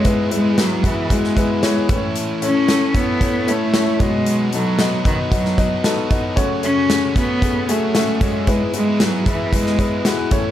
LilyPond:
<<
  \new Staff \with { instrumentName = "Upright piano" } { \time 4/4 \key e \major \tempo 4 = 114 <gis b e' b'>8 <gis b e' b'>8 <gis b e' fis'>8 <gis b e' fis'>8 <gis b e' fis'>8 <gis b e' b'>8 <gis b e' cis''>8 <a cis' e' b' cis''>8~ | <a cis' e' b' cis''>8 <a cis' e' cis''>8 <a cis' e' a'>8 <a cis' e' cis''>8 <a cis' e' cis''>8 <a cis' e' cis''>8 <a cis' e' cis''>8 <b dis' fis' dis''>8~ | <b dis' fis' dis''>8 <b dis' fis' a'>8 <b dis' fis' dis''>8 <b dis' fis' dis''>8 <b dis' fis' dis''>8 <b dis' fis' dis''>8 <b dis' fis' a'>8 <b dis' fis' dis''>8 | <a cis' fis' cis''>8 <a cis' fis' cis''>8 <a cis' fis' gis'>8 <a cis' fis' cis''>8 <a cis' fis' gis'>8 <a cis' fis' gis'>8 <a cis' fis' e''>8 <a cis' fis' cis''>8 |
<gis b e' b'>8 <gis b e' b'>8 <gis b e' fis'>8 <gis b e' b'>8 <gis b e' b'>8 <gis b e' b'>8 <gis b e' fis'>8 <a cis' e' cis''>8 | }
  \new Staff \with { instrumentName = "Upright piano" } { \clef bass \time 4/4 \key e \major gis,2.~ gis,8 <a, e>8~ | <a, e>2.~ <a, e>8 <b, fis>8~ | <b, fis>2.~ <b, fis>8 r8 | <fis, cis>1 |
gis,2.~ gis,8 <a, e>8 | }
  \new Staff \with { instrumentName = "Overdriven electric guitar" } { \time 4/4 \key e \major <gis b e' gis'>8. <b e' gis'>8. <gis b e' gis'>4 <gis b e' gis'>8. <b e' gis'>16 <a, e a cis' e' a'>8~ | <a, e a cis' e' a'>8. <a cis' e' a'>8. <a cis' e' a'>4 <a cis' e' a'>8. <a cis' e' a'>16 <b, fis b dis' fis'>8~ | <b, fis b dis' fis'>8. <b dis' fis'>8. <fis b dis' fis'>4 <fis b dis' fis'>8. <b dis' fis'>8. | <fis a cis' fis'>8. <fis a cis' fis'>8. <fis a cis' fis'>4 <fis a cis' fis'>8. <fis a cis' fis'>8. |
<gis b e' gis'>8. <b e' gis'>8. <gis b e' gis'>4 <gis b e' gis'>8. <b e' gis'>16 <a, e a cis' e' a'>8 | }
  \new Staff \with { instrumentName = "Cello" } { \clef bass \time 4/4 \key e \major gis8 gis8 fis8 e8 gis4 r4 | r8 cis'4 b4 a4 gis8~ | gis8 fis4 dis8 fis4 r4 | r8 cis'4 b4 a4 gis8 |
gis8 gis8 fis8 e8 gis4 r4 | }
  \new DrumStaff \with { instrumentName = "Drums" } \drummode { \time 4/4 <hh bd>8 hh8 <hh sn>8 <hh bd>8 <hh bd>16 sn16 <hh bd>8 <hh sn>8 <hh bd>8 | hh8 hh8 <hh sn>8 <hh bd>8 <hh bd>8 hh8 <hh sn>8 <hh bd>8 | hh8 hh8 <hh sn>8 <hh bd>8 <hh bd>16 sn16 <hh bd>8 <hh sn>8 <hh bd>8 | <hh bd>8 hh8 <hh sn>8 <hh bd>8 <hh bd>8 hh8 <hh sn>8 <hh bd>8 |
<hh bd>8 hh8 <hh sn>8 <hh bd>8 <hh bd>16 sn16 <hh bd>8 <hh sn>8 <hh bd>8 | }
>>